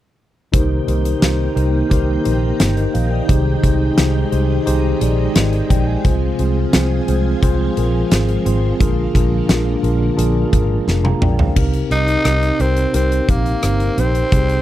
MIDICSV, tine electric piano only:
0, 0, Header, 1, 2, 480
1, 0, Start_track
1, 0, Key_signature, -3, "minor"
1, 0, Tempo, 689655
1, 370, Time_signature, 4, 2, 24, 8
1, 10174, End_track
2, 0, Start_track
2, 0, Title_t, "Tine electric piano"
2, 0, Program_c, 0, 4
2, 364, Note_on_c, 0, 63, 100
2, 369, Note_on_c, 0, 67, 95
2, 370, Note_on_c, 0, 48, 69
2, 371, Note_on_c, 0, 70, 93
2, 373, Note_on_c, 0, 72, 112
2, 507, Control_c, 0, 64, 127
2, 587, Note_off_c, 0, 63, 0
2, 590, Note_off_c, 0, 67, 0
2, 591, Note_off_c, 0, 70, 0
2, 592, Note_off_c, 0, 72, 0
2, 605, Note_on_c, 0, 63, 78
2, 608, Note_on_c, 0, 67, 70
2, 611, Note_on_c, 0, 70, 68
2, 614, Note_on_c, 0, 72, 83
2, 828, Note_off_c, 0, 63, 0
2, 830, Note_off_c, 0, 67, 0
2, 831, Note_off_c, 0, 70, 0
2, 832, Note_off_c, 0, 72, 0
2, 841, Note_on_c, 0, 63, 79
2, 842, Note_on_c, 0, 67, 70
2, 847, Note_on_c, 0, 70, 70
2, 851, Note_on_c, 0, 72, 89
2, 1062, Note_off_c, 0, 48, 0
2, 1066, Note_off_c, 0, 63, 0
2, 1067, Note_off_c, 0, 67, 0
2, 1069, Note_off_c, 0, 70, 0
2, 1071, Note_off_c, 0, 72, 0
2, 1078, Note_on_c, 0, 63, 78
2, 1082, Note_on_c, 0, 67, 74
2, 1086, Note_on_c, 0, 70, 72
2, 1088, Note_on_c, 0, 72, 86
2, 1305, Note_off_c, 0, 63, 0
2, 1306, Note_off_c, 0, 67, 0
2, 1308, Note_off_c, 0, 70, 0
2, 1309, Note_off_c, 0, 72, 0
2, 1319, Note_on_c, 0, 63, 107
2, 1321, Note_on_c, 0, 67, 96
2, 1327, Note_on_c, 0, 70, 96
2, 1328, Note_on_c, 0, 72, 111
2, 1545, Note_off_c, 0, 63, 0
2, 1546, Note_off_c, 0, 67, 0
2, 1549, Note_off_c, 0, 70, 0
2, 1550, Note_off_c, 0, 72, 0
2, 1560, Note_on_c, 0, 63, 78
2, 1561, Note_on_c, 0, 67, 71
2, 1565, Note_on_c, 0, 70, 70
2, 1568, Note_on_c, 0, 72, 84
2, 1785, Note_off_c, 0, 63, 0
2, 1786, Note_off_c, 0, 67, 0
2, 1788, Note_off_c, 0, 70, 0
2, 1789, Note_off_c, 0, 72, 0
2, 1804, Note_on_c, 0, 72, 61
2, 1808, Note_on_c, 0, 67, 51
2, 1921, Note_off_c, 0, 72, 0
2, 1923, Note_off_c, 0, 67, 0
2, 1924, Note_on_c, 0, 75, 64
2, 1926, Note_on_c, 0, 70, 57
2, 2041, Note_off_c, 0, 75, 0
2, 2042, Note_off_c, 0, 70, 0
2, 2045, Note_on_c, 0, 77, 66
2, 2050, Note_on_c, 0, 72, 58
2, 2162, Note_off_c, 0, 77, 0
2, 2164, Note_off_c, 0, 72, 0
2, 2165, Note_on_c, 0, 79, 61
2, 2171, Note_on_c, 0, 74, 51
2, 2282, Note_on_c, 0, 63, 101
2, 2286, Note_on_c, 0, 48, 69
2, 2286, Note_on_c, 0, 67, 90
2, 2288, Note_on_c, 0, 68, 90
2, 2291, Note_on_c, 0, 72, 114
2, 2299, Control_c, 0, 64, 0
2, 2396, Note_off_c, 0, 79, 0
2, 2399, Note_off_c, 0, 74, 0
2, 2420, Control_c, 0, 64, 127
2, 2507, Note_off_c, 0, 63, 0
2, 2509, Note_off_c, 0, 67, 0
2, 2509, Note_off_c, 0, 68, 0
2, 2511, Note_off_c, 0, 72, 0
2, 2521, Note_on_c, 0, 63, 77
2, 2523, Note_on_c, 0, 67, 69
2, 2527, Note_on_c, 0, 68, 68
2, 2530, Note_on_c, 0, 72, 89
2, 2746, Note_off_c, 0, 63, 0
2, 2747, Note_off_c, 0, 67, 0
2, 2749, Note_off_c, 0, 68, 0
2, 2750, Note_off_c, 0, 72, 0
2, 2759, Note_on_c, 0, 63, 76
2, 2763, Note_on_c, 0, 67, 69
2, 2764, Note_on_c, 0, 68, 69
2, 2769, Note_on_c, 0, 72, 85
2, 2980, Note_off_c, 0, 48, 0
2, 2985, Note_off_c, 0, 63, 0
2, 2987, Note_off_c, 0, 67, 0
2, 2988, Note_off_c, 0, 68, 0
2, 2990, Note_off_c, 0, 72, 0
2, 3000, Note_on_c, 0, 63, 78
2, 3003, Note_on_c, 0, 67, 73
2, 3006, Note_on_c, 0, 68, 70
2, 3008, Note_on_c, 0, 72, 88
2, 3225, Note_off_c, 0, 63, 0
2, 3227, Note_off_c, 0, 67, 0
2, 3229, Note_off_c, 0, 68, 0
2, 3229, Note_off_c, 0, 72, 0
2, 3239, Note_on_c, 0, 63, 102
2, 3244, Note_on_c, 0, 67, 98
2, 3246, Note_on_c, 0, 68, 97
2, 3249, Note_on_c, 0, 72, 121
2, 3465, Note_off_c, 0, 63, 0
2, 3468, Note_off_c, 0, 67, 0
2, 3469, Note_off_c, 0, 68, 0
2, 3470, Note_off_c, 0, 72, 0
2, 3483, Note_on_c, 0, 63, 79
2, 3487, Note_on_c, 0, 67, 70
2, 3487, Note_on_c, 0, 68, 76
2, 3492, Note_on_c, 0, 74, 84
2, 3707, Note_off_c, 0, 63, 0
2, 3709, Note_off_c, 0, 67, 0
2, 3709, Note_off_c, 0, 68, 0
2, 3712, Note_off_c, 0, 74, 0
2, 3729, Note_on_c, 0, 75, 62
2, 3734, Note_on_c, 0, 70, 53
2, 3958, Note_off_c, 0, 75, 0
2, 3960, Note_off_c, 0, 70, 0
2, 3969, Note_on_c, 0, 79, 72
2, 3975, Note_on_c, 0, 74, 60
2, 4084, Note_off_c, 0, 79, 0
2, 4086, Note_off_c, 0, 74, 0
2, 4086, Note_on_c, 0, 80, 58
2, 4092, Note_on_c, 0, 75, 51
2, 4206, Note_on_c, 0, 60, 96
2, 4207, Note_on_c, 0, 65, 96
2, 4209, Note_on_c, 0, 48, 66
2, 4211, Note_on_c, 0, 68, 94
2, 4213, Note_on_c, 0, 72, 111
2, 4218, Control_c, 0, 64, 0
2, 4316, Note_off_c, 0, 80, 0
2, 4319, Note_off_c, 0, 75, 0
2, 4345, Control_c, 0, 64, 127
2, 4428, Note_off_c, 0, 60, 0
2, 4429, Note_off_c, 0, 65, 0
2, 4431, Note_off_c, 0, 68, 0
2, 4432, Note_off_c, 0, 72, 0
2, 4446, Note_on_c, 0, 60, 76
2, 4450, Note_on_c, 0, 65, 70
2, 4452, Note_on_c, 0, 68, 72
2, 4454, Note_on_c, 0, 72, 80
2, 4668, Note_off_c, 0, 60, 0
2, 4670, Note_off_c, 0, 65, 0
2, 4671, Note_off_c, 0, 68, 0
2, 4672, Note_off_c, 0, 72, 0
2, 4683, Note_on_c, 0, 60, 75
2, 4687, Note_on_c, 0, 65, 71
2, 4687, Note_on_c, 0, 68, 72
2, 4692, Note_on_c, 0, 72, 83
2, 4901, Note_off_c, 0, 48, 0
2, 4907, Note_off_c, 0, 60, 0
2, 4909, Note_off_c, 0, 65, 0
2, 4909, Note_off_c, 0, 68, 0
2, 4911, Note_off_c, 0, 72, 0
2, 4924, Note_on_c, 0, 60, 84
2, 4929, Note_on_c, 0, 65, 71
2, 4930, Note_on_c, 0, 68, 74
2, 4935, Note_on_c, 0, 72, 85
2, 5147, Note_off_c, 0, 60, 0
2, 5150, Note_off_c, 0, 65, 0
2, 5150, Note_off_c, 0, 68, 0
2, 5153, Note_off_c, 0, 72, 0
2, 5164, Note_on_c, 0, 60, 102
2, 5166, Note_on_c, 0, 65, 97
2, 5170, Note_on_c, 0, 68, 95
2, 5172, Note_on_c, 0, 72, 120
2, 5387, Note_off_c, 0, 60, 0
2, 5388, Note_off_c, 0, 65, 0
2, 5391, Note_off_c, 0, 68, 0
2, 5392, Note_off_c, 0, 72, 0
2, 5405, Note_on_c, 0, 60, 77
2, 5409, Note_on_c, 0, 65, 70
2, 5412, Note_on_c, 0, 68, 74
2, 5416, Note_on_c, 0, 70, 85
2, 5628, Note_off_c, 0, 60, 0
2, 5630, Note_off_c, 0, 65, 0
2, 5631, Note_off_c, 0, 68, 0
2, 5633, Note_off_c, 0, 70, 0
2, 5642, Note_on_c, 0, 60, 82
2, 5646, Note_on_c, 0, 65, 73
2, 5648, Note_on_c, 0, 68, 72
2, 5652, Note_on_c, 0, 72, 86
2, 5866, Note_off_c, 0, 60, 0
2, 5868, Note_off_c, 0, 65, 0
2, 5870, Note_off_c, 0, 68, 0
2, 5871, Note_off_c, 0, 72, 0
2, 5883, Note_on_c, 0, 60, 84
2, 5886, Note_on_c, 0, 65, 75
2, 5888, Note_on_c, 0, 68, 72
2, 5893, Note_on_c, 0, 72, 92
2, 6107, Note_off_c, 0, 60, 0
2, 6109, Note_off_c, 0, 65, 0
2, 6109, Note_off_c, 0, 68, 0
2, 6112, Note_off_c, 0, 72, 0
2, 6120, Note_on_c, 0, 62, 99
2, 6124, Note_on_c, 0, 65, 94
2, 6127, Note_on_c, 0, 46, 69
2, 6128, Note_on_c, 0, 68, 95
2, 6130, Note_on_c, 0, 70, 109
2, 6140, Control_c, 0, 64, 0
2, 6245, Control_c, 0, 64, 127
2, 6346, Note_off_c, 0, 62, 0
2, 6348, Note_off_c, 0, 65, 0
2, 6349, Note_off_c, 0, 68, 0
2, 6351, Note_off_c, 0, 70, 0
2, 6363, Note_on_c, 0, 62, 79
2, 6364, Note_on_c, 0, 65, 67
2, 6367, Note_on_c, 0, 68, 72
2, 6370, Note_on_c, 0, 70, 87
2, 6587, Note_off_c, 0, 62, 0
2, 6587, Note_off_c, 0, 65, 0
2, 6589, Note_off_c, 0, 68, 0
2, 6590, Note_off_c, 0, 70, 0
2, 6601, Note_on_c, 0, 62, 76
2, 6603, Note_on_c, 0, 65, 72
2, 6605, Note_on_c, 0, 68, 67
2, 6608, Note_on_c, 0, 70, 80
2, 6821, Note_off_c, 0, 46, 0
2, 6826, Note_off_c, 0, 62, 0
2, 6827, Note_off_c, 0, 65, 0
2, 6828, Note_off_c, 0, 68, 0
2, 6830, Note_off_c, 0, 70, 0
2, 6841, Note_on_c, 0, 62, 79
2, 6844, Note_on_c, 0, 65, 75
2, 6845, Note_on_c, 0, 68, 76
2, 6849, Note_on_c, 0, 70, 88
2, 7066, Note_off_c, 0, 62, 0
2, 7067, Note_off_c, 0, 65, 0
2, 7068, Note_off_c, 0, 68, 0
2, 7070, Note_off_c, 0, 70, 0
2, 7078, Note_on_c, 0, 62, 104
2, 7080, Note_on_c, 0, 65, 92
2, 7083, Note_on_c, 0, 68, 91
2, 7087, Note_on_c, 0, 70, 114
2, 7304, Note_off_c, 0, 62, 0
2, 7305, Note_off_c, 0, 65, 0
2, 7307, Note_off_c, 0, 68, 0
2, 7309, Note_off_c, 0, 70, 0
2, 7318, Note_on_c, 0, 62, 75
2, 7319, Note_on_c, 0, 65, 68
2, 7322, Note_on_c, 0, 68, 75
2, 7326, Note_on_c, 0, 70, 84
2, 7545, Note_off_c, 0, 62, 0
2, 7545, Note_off_c, 0, 65, 0
2, 7546, Note_off_c, 0, 68, 0
2, 7548, Note_off_c, 0, 70, 0
2, 7685, Note_on_c, 0, 82, 59
2, 7690, Note_on_c, 0, 77, 51
2, 7801, Note_off_c, 0, 82, 0
2, 7804, Note_off_c, 0, 77, 0
2, 7804, Note_on_c, 0, 79, 69
2, 7807, Note_on_c, 0, 74, 57
2, 7921, Note_off_c, 0, 79, 0
2, 7922, Note_off_c, 0, 74, 0
2, 7927, Note_on_c, 0, 77, 61
2, 8042, Note_on_c, 0, 60, 101
2, 8045, Note_on_c, 0, 63, 92
2, 8048, Note_on_c, 0, 48, 69
2, 8048, Note_on_c, 0, 67, 89
2, 8050, Note_on_c, 0, 70, 114
2, 8060, Control_c, 0, 64, 0
2, 8157, Note_off_c, 0, 77, 0
2, 8175, Control_c, 0, 64, 127
2, 8266, Note_off_c, 0, 60, 0
2, 8268, Note_off_c, 0, 63, 0
2, 8269, Note_off_c, 0, 67, 0
2, 8270, Note_off_c, 0, 70, 0
2, 8279, Note_on_c, 0, 60, 68
2, 8282, Note_on_c, 0, 63, 60
2, 8285, Note_on_c, 0, 67, 61
2, 8288, Note_on_c, 0, 70, 71
2, 8505, Note_off_c, 0, 60, 0
2, 8507, Note_off_c, 0, 63, 0
2, 8508, Note_off_c, 0, 67, 0
2, 8510, Note_off_c, 0, 70, 0
2, 8518, Note_on_c, 0, 60, 63
2, 8523, Note_on_c, 0, 63, 58
2, 8526, Note_on_c, 0, 67, 59
2, 8529, Note_on_c, 0, 70, 70
2, 8741, Note_off_c, 0, 48, 0
2, 8744, Note_off_c, 0, 60, 0
2, 8747, Note_off_c, 0, 63, 0
2, 8748, Note_off_c, 0, 67, 0
2, 8750, Note_off_c, 0, 70, 0
2, 8762, Note_on_c, 0, 60, 64
2, 8765, Note_on_c, 0, 63, 59
2, 8769, Note_on_c, 0, 67, 61
2, 8771, Note_on_c, 0, 70, 76
2, 8986, Note_off_c, 0, 60, 0
2, 8988, Note_off_c, 0, 63, 0
2, 8990, Note_off_c, 0, 67, 0
2, 8991, Note_off_c, 0, 70, 0
2, 9001, Note_on_c, 0, 60, 88
2, 9002, Note_on_c, 0, 63, 81
2, 9006, Note_on_c, 0, 67, 80
2, 9008, Note_on_c, 0, 70, 94
2, 9226, Note_off_c, 0, 60, 0
2, 9227, Note_off_c, 0, 63, 0
2, 9229, Note_off_c, 0, 67, 0
2, 9230, Note_off_c, 0, 70, 0
2, 9243, Note_on_c, 0, 60, 67
2, 9246, Note_on_c, 0, 63, 62
2, 9250, Note_on_c, 0, 67, 64
2, 9252, Note_on_c, 0, 70, 73
2, 9467, Note_off_c, 0, 60, 0
2, 9468, Note_off_c, 0, 63, 0
2, 9470, Note_off_c, 0, 67, 0
2, 9471, Note_off_c, 0, 70, 0
2, 9485, Note_on_c, 0, 60, 70
2, 9485, Note_on_c, 0, 63, 63
2, 9490, Note_on_c, 0, 67, 58
2, 9492, Note_on_c, 0, 72, 72
2, 9708, Note_off_c, 0, 60, 0
2, 9708, Note_off_c, 0, 63, 0
2, 9711, Note_off_c, 0, 67, 0
2, 9711, Note_off_c, 0, 72, 0
2, 9723, Note_on_c, 0, 60, 67
2, 9725, Note_on_c, 0, 63, 61
2, 9729, Note_on_c, 0, 67, 63
2, 9729, Note_on_c, 0, 72, 77
2, 9947, Note_off_c, 0, 60, 0
2, 9948, Note_off_c, 0, 63, 0
2, 9950, Note_off_c, 0, 67, 0
2, 9950, Note_off_c, 0, 72, 0
2, 9965, Note_on_c, 0, 60, 86
2, 9967, Note_on_c, 0, 63, 76
2, 9969, Note_on_c, 0, 48, 58
2, 9971, Note_on_c, 0, 67, 77
2, 9971, Note_on_c, 0, 68, 96
2, 9979, Control_c, 0, 64, 0
2, 10086, Control_c, 0, 64, 127
2, 10174, Note_off_c, 0, 48, 0
2, 10174, Note_off_c, 0, 60, 0
2, 10174, Note_off_c, 0, 63, 0
2, 10174, Note_off_c, 0, 67, 0
2, 10174, Note_off_c, 0, 68, 0
2, 10174, End_track
0, 0, End_of_file